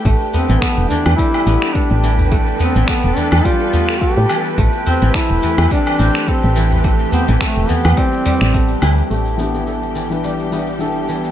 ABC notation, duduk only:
X:1
M:4/4
L:1/16
Q:"Swing 16ths" 1/4=106
K:Am
V:1 name="Duduk"
z2 C2 B,2 D2 E4 D3 z | z2 C2 B,2 D2 F4 G3 z | z2 C2 E4 D4 C3 z | z2 B,2 A,2 B,2 C6 z2 |
z16 |]